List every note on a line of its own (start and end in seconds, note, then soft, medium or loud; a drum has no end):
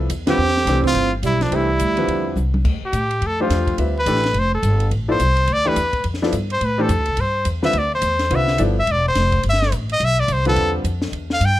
0.09 0.37 E2 medium
0.09 hi-hat pedal soft
0.09 ride medium
0.27 0.37 D3 medium
0.27 0.37 G3 medium
0.27 0.80 C4 medium
0.27 0.38 C4 medium
0.27 0.38 F4 medium
0.27 0.82 G4 loud
0.27 0.38 B4 medium
0.27 snare medium
0.27 ride medium
0.38 0.65 E2 medium
0.48 snare soft
0.57 snare soft
0.65 0.94 C2 medium
0.65 1.09 E3 medium
0.65 1.09 A3 soft
0.65 1.10 D4 soft
0.65 1.10 G4 soft
0.65 1.10 C5 medium
0.65 snare soft
0.65 hi-hat pedal medium
0.65 ride medium
0.84 1.10 C4 medium
0.84 1.12 F4 medium
0.84 kick soft
0.94 1.22 G1 medium
0.94 ride soft
1.22 1.51 B1 medium
1.22 1.43 G3 medium
1.22 1.44 E4 medium
1.22 hi-hat pedal medium
1.22 ride medium
1.41 1.54 F3 medium
1.41 1.56 D4 medium
1.41 snare soft
1.41 ride soft
1.51 1.79 C2 medium
1.51 1.67 E3 soft
1.51 2.37 G3 medium
1.51 1.67 A3 soft
1.51 1.68 D4 soft
1.51 2.39 E4 medium
1.51 1.68 G4 soft
1.51 1.68 C5 medium
1.51 ride medium
1.79 2.07 D2 medium
1.79 hi-hat pedal medium
1.79 ride medium
1.97 2.35 D3 medium
1.97 2.35 F3 soft
1.97 2.35 G3 soft
1.97 2.35 C4 medium
1.97 2.35 B4 medium
1.97 ride soft
2.07 2.35 E2 medium
2.07 ride soft
2.36 2.64 C2 medium
2.36 hi-hat pedal soft
2.36 mid tom soft
2.54 mid tom medium
2.64 2.81 D2 medium
2.64 kick medium
2.64 crash medium
2.81 muted upright bass stroke soft
2.85 3.28 G4 medium
2.93 3.21 A2 medium
2.93 hi-hat pedal medium
2.93 ride medium
3.11 ride soft
3.21 3.49 F2 medium
3.21 ride soft
3.27 3.42 A4 medium
3.40 3.77 F3 medium
3.40 3.77 A3 medium
3.40 3.77 D4 medium
3.40 3.78 F4 medium
3.40 3.77 G4 medium
3.40 3.77 C5 medium
3.50 3.77 E2 medium
3.50 snare soft
3.50 hi-hat pedal soft
3.50 ride medium
3.67 kick soft
3.67 ride soft
3.78 4.05 D2 medium
3.78 3.94 G3 soft
3.78 3.94 C4 soft
3.78 3.94 F4 soft
3.78 3.94 B4 soft
3.78 3.94 E5 medium
3.78 ride medium
3.99 4.41 B4 medium
4.06 4.33 A1 medium
4.06 4.22 E3 medium
4.06 4.22 A3 medium
4.06 4.23 D4 medium
4.06 4.23 G4 medium
4.06 4.23 A4 medium
4.06 hi-hat pedal medium
4.06 ride medium
4.16 snare soft
4.23 snare soft
4.23 ride soft
4.34 4.62 F1 medium
4.34 ride soft
4.39 4.54 C5 medium
4.54 4.90 A4 medium
4.63 4.90 G1 medium
4.63 hi-hat pedal medium
4.63 ride medium
4.80 ride soft
4.91 5.19 A1 medium
4.91 ride soft
5.08 5.19 F3 medium
5.08 5.19 B3 soft
5.08 5.19 E4 medium
5.08 5.19 A4 medium
5.08 5.54 C5 medium
5.08 5.19 D5 medium
5.19 5.47 C2 medium
5.19 hi-hat pedal medium
5.19 ride medium
5.37 ride soft
5.47 5.76 D2 medium
5.47 ride medium
5.53 5.69 D5 medium
5.65 5.75 E3 medium
5.65 5.76 A3 medium
5.65 5.75 D4 medium
5.65 5.75 G4 medium
5.65 6.06 B4 medium
5.65 5.76 D5 medium
5.76 6.04 E2 medium
5.76 hi-hat pedal medium
5.76 ride medium
5.93 kick soft
5.93 ride soft
6.04 6.32 F2 medium
6.04 ride medium
6.14 snare soft
6.22 6.32 F3 medium
6.22 6.32 B3 medium
6.22 6.32 E4 medium
6.22 6.32 A4 medium
6.22 6.33 D5 medium
6.22 snare soft
6.32 6.60 G2 medium
6.32 hi-hat pedal medium
6.32 ride medium
6.50 6.66 C5 medium
6.50 ride soft
6.61 6.88 A2 medium
6.61 6.83 B4 medium
6.61 ride medium
6.78 6.88 E3 medium
6.78 6.88 A3 medium
6.78 6.89 D4 medium
6.78 6.89 G4 medium
6.78 7.22 A4 medium
6.78 6.89 C5 medium
6.89 6.98 F2 medium
6.89 hi-hat pedal medium
6.89 ride medium
6.98 7.08 D2 soft
7.06 7.17 C2 medium
7.06 ride soft
7.17 7.45 G2 medium
7.17 7.48 C5 medium
7.17 ride medium
7.45 7.73 E2 medium
7.45 hi-hat pedal medium
7.45 ride medium
7.62 7.73 D3 medium
7.62 7.73 G3 medium
7.62 7.73 C4 medium
7.62 7.73 F4 medium
7.62 7.73 B4 medium
7.62 7.80 E5 medium
7.62 snare soft
7.73 8.01 D2 medium
7.73 ride medium
7.78 7.94 D5 medium
7.95 8.37 C5 medium
8.02 8.30 E2 medium
8.02 hi-hat pedal medium
8.02 ride medium
8.19 snare soft
8.19 ride soft
8.30 8.58 C2 medium
8.30 8.58 D3 medium
8.30 8.58 G3 soft
8.30 8.58 C4 soft
8.30 8.58 F4 medium
8.30 8.58 B4 medium
8.30 ride medium
8.35 8.61 E5 medium
8.48 snare soft
8.58 8.87 G1 medium
8.58 8.75 F3 medium
8.58 8.75 B3 medium
8.58 8.75 E4 soft
8.58 8.75 A4 medium
8.58 8.75 D5 medium
8.58 hi-hat pedal soft
8.58 ride medium
8.79 8.93 E5 medium
8.87 9.15 E1 medium
8.87 ride medium
8.91 9.07 D5 medium
9.08 9.43 C5 medium
9.15 9.43 F1 medium
9.15 snare soft
9.15 hi-hat pedal soft
9.15 ride medium
9.32 kick soft
9.32 ride soft
9.43 9.71 G1 medium
9.43 ride medium
9.49 9.73 E5 medium
9.53 snare soft
9.62 snare soft
9.72 9.99 A1 medium
9.72 hi-hat pedal medium
9.72 ride medium
9.89 10.06 D#5 loud
9.89 ride soft
10.00 10.27 B1 medium
10.00 ride medium
10.05 10.21 E5 loud
10.20 10.34 D5 medium
10.28 10.55 C2 medium
10.28 hi-hat pedal soft
10.28 ride medium
10.33 10.47 C5 medium
10.45 10.83 D3 medium
10.45 10.83 G3 medium
10.45 10.83 C4 medium
10.45 10.83 F4 medium
10.45 10.73 A4 medium
10.45 10.83 B4 medium
10.45 ride soft
10.56 10.83 E2 medium
10.56 ride medium
10.84 11.11 F2 medium
10.84 hi-hat pedal soft
10.84 ride medium
11.02 snare medium
11.12 11.40 E2 medium
11.12 ride medium
11.30 11.47 F5 medium
11.30 snare soft
11.40 11.60 G2 medium
11.40 hi-hat pedal medium
11.40 ride medium
11.45 11.60 G5 medium